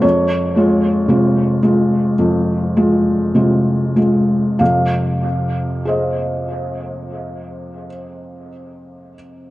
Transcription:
<<
  \new Staff \with { instrumentName = "Felt piano" } { \time 4/4 \key f \minor \tempo 4 = 49 << { des''2.~ des''8 r8 | f''1 | } \\ { r1 | r4 <aes' c'' ees''>2. | } >> }
  \new Staff \with { instrumentName = "Felt piano" } { \clef bass \time 4/4 \key f \minor f,8 <aes f'>8 <c aes f'>8 <aes f'>8 f,8 <aes f'>8 <c aes f'>8 <aes f'>8 | <f, c>1 | }
>>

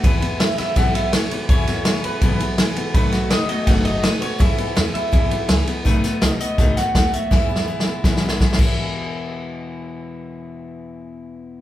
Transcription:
<<
  \new Staff \with { instrumentName = "Clean electric guitar" } { \time 4/4 \key e \major \tempo 4 = 165 b'4 e''8 e''8 fis''8 e''8 cis''8 b'8 | cis''4. b'2 r8 | b'4 dis''8 dis''8 fis''8 dis''8 b'8 cis''8 | e''4. e''2 r8 |
b'4 dis''8 dis''4 fis''8 fis''8 e''8~ | e''2. r4 | r1 | r1 | }
  \new Staff \with { instrumentName = "Steel-string acoustic guitar" } { \time 4/4 \key e \major <e, b, e gis b e'>8 <e gis b e'>8 <e gis b e'>8 <e gis b e'>8 <e, b, e gis b e'>8 <e gis b e'>8 <e gis b e'>8 <e gis b e'>8 | <e, b, e gis b e'>8 <e gis b e'>8 <e gis b e'>8 <e gis b e'>8 <e, b, e gis b e'>8 <e gis b e'>8 <e gis b e'>8 <e gis b e'>8 | <b, dis a b fis'>8 <a b fis'>8 <dis a b fis'>8 <a b fis'>8 <b, dis a b fis'>8 <a b fis'>8 <dis a b fis'>8 <a b fis'>8 | <e, b, e gis b e'>8 <e gis b e'>8 <e gis b e'>8 <e gis b e'>8 <e, b, e gis b e'>8 <e gis b e'>8 <e gis b e'>8 <e gis b e'>8 |
<b, dis a b fis'>8 <a b fis'>8 <dis a b fis'>8 <a b fis'>8 <b, dis a b fis'>8 <a b fis'>8 <dis a b fis'>8 <a b fis'>8 | <e, b, e gis b e'>8 <e gis b e'>8 <e gis b e'>8 <e gis b e'>8 <e, b, e gis b e'>8 <e gis b e'>8 <e gis b e'>8 <e, b, e gis b e'>8~ | <e, b, e gis b e'>1~ | <e, b, e gis b e'>1 | }
  \new Staff \with { instrumentName = "Upright bass" } { \clef bass \time 4/4 \key e \major e,4. r8 b,,4. r8 | e,4. r8 b,,4. r8 | b,,4. r8 fis,,4. r8 | e,8 r8 e,8 r8 dis,8 r8 cis,8 r8 |
b,,8 r8 b,,8 r8 cis,8 r8 dis,8 r8 | e,4. r8 b,,4. e,8~ | e,1~ | e,1 | }
  \new DrumStaff \with { instrumentName = "Drums" } \drummode { \time 4/4 <bd cymr>8 cymr8 <cymr sn>8 <cymr sn>8 <bd cymr sn>8 cymr8 <cymr sn>8 cymr8 | <bd cymr>8 <cymr sn>8 <cymr sn>8 cymr8 <bd cymr>8 cymr8 <cymr sn>8 cymr8 | <bd cymr>8 <cymr sn>8 <cymr sn>8 cymr8 <bd cymr sn>8 cymr8 <cymr sn>8 cymr8 | <bd cymr sn>8 cymr8 <cymr sn>8 cymr8 <bd cymr>8 cymr8 <cymr sn>8 cymr8 |
<hh bd>8 <hh sn>8 <hh sn>8 hh8 <hh bd sn>8 <hh sn>8 <hh bd sn>8 hh8 | \tuplet 3/2 { <bd sn>8 r8 sn8 r8 sn8 r8 <bd sn>8 sn8 sn8 <bd sn>16 r16 sn16 <cymc bd>16 r16 r16 } | r4 r4 r4 r4 | r4 r4 r4 r4 | }
>>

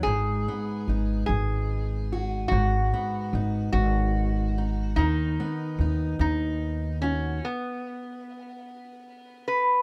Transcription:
<<
  \new Staff \with { instrumentName = "Resonator guitar played with a steel bar" } { \time 6/8 \key gis \phrygian \tempo 4. = 49 gis'4. gis'4. | fis'4. fis'4. | dis'4. dis'4 cis'8 | b2~ b8 b'8 | }
  \new Staff \with { instrumentName = "Steel-string acoustic guitar" } { \time 6/8 \key gis \phrygian << { r8 b8 dis'4. fis'8 | r8 b8 dis'4. dis'8 | r8 b8 dis'4. fis'8 | r2. | } \\ { gis,2. | gis,2. | dis2. | r2. | } >> }
  \new Staff \with { instrumentName = "Upright bass" } { \clef bass \time 6/8 \key gis \phrygian gis,,8 r8 gis,,8 gis,,4. | gis,,8 r8 gis,,8 gis,,4. | dis,8 r8 dis,8 dis,4. | r2. | }
>>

